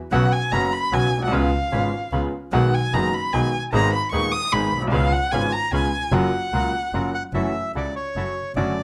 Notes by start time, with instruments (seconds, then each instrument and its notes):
0.11 double bass B1, upright piano B1 B2 C#3 F#3 B3 F#4, bandoneon C#4 F#4 B4, violin F#5
0.32 violin G#5
0.52 double bass F#1, upright piano F#1 F#2 C#3 F#3 B3 F#4, bandoneon C#4 F#4 B4, violin A#5
0.72 violin B5
0.91 double bass B1, upright piano B1 B2 C#3 F#3 B3 F#4, bandoneon C#4 F#4 B4, violin G#5
1.11 double bass B1
1.18 upright piano A#1
1.23 upright piano B1, violin F#5
1.27 upright piano C2 C#3, double bass C#2
1.31 upright piano C#2 G#3 B3 F4, bandoneon C#4 F4 B4, violin F5
1.71 double bass G#1, upright piano G#1 G#2 C#3 G#3 B3 F4, bandoneon C#4 F4 B4
2.12 double bass C#2, upright piano C#2 C#3 G#3 B3 F4, bandoneon C#4 F4 B4
2.52 double bass B1, upright piano B1 B2 D#3 G#3 B3 F#4, bandoneon D#4 G#4 B4, violin F#5
2.74 violin G#5
2.92 double bass F#1, upright piano F#1 F#2 D#3 G#3 B3 F#4, bandoneon D#4 G#4 B4, violin A#5
3.13 violin B5
3.33 double bass B1, upright piano B1 B2 D#3 G#3 B3 F#4, bandoneon D#4 G#4 B4, violin G#5
3.72 upright piano G#1 G#2 D#3 G#3 B3 G#4, double bass G#1, bandoneon D#4 G#4 B4, violin A#5
3.94 violin B5
4.12 upright piano D#1 D#2 D#3 G#3 B3 G#4, double bass D#2, bandoneon D#4 G#4 B4, violin C#6
4.32 violin D#6
4.52 upright piano G#1 G#2 D#3 G#3 B3 G#4, double bass G#1, bandoneon D#4 G#4 B4, violin B5
4.73 upright piano A#1, double bass B1
4.82 upright piano B1
4.87 upright piano C2
4.92 upright piano C#2 C#3 G#3 B3 F4, double bass C#2, bandoneon C#4 F4 B4, violin F5
5.13 violin F#5
5.32 upright piano G#1 G#2 C#3 G#3 B3 F4, double bass G#1, bandoneon C#4 F4 B4, violin G#5
5.52 violin A#5
5.72 double bass C#2, upright piano C#2 C#3 G#3 B3 F4, bandoneon C#4 F4 B4, violin G#5
6.12 double bass F#1, upright piano F#2 C#3 F#3 A#3 F4, bandoneon F4 F#4 A#4, violin F#5
6.53 double bass C#2, upright piano C#2 C#3 F#3 A#3 F4, bandoneon F4 F#4 A#4
6.93 double bass F#1, upright piano F#2 C#3 F#3 A#3 F4, bandoneon F4 F#4 A#4
7.15 bandoneon F#5
7.33 double bass F#1, upright piano F#2 E3 F#3 A3 C#4 F#4, bandoneon E4 F#4 A4 E5
7.74 double bass C#2, upright piano C#2 C#3, bandoneon E4 F#4 A4 D5
7.96 bandoneon C#5
8.16 double bass F#1, upright piano F#2 F#3, bandoneon E4 F#4 A4
8.56 double bass F#1, upright piano F#2 D3 F#3 A3 C#4 F#4, bandoneon C#4 D4 F#4 D5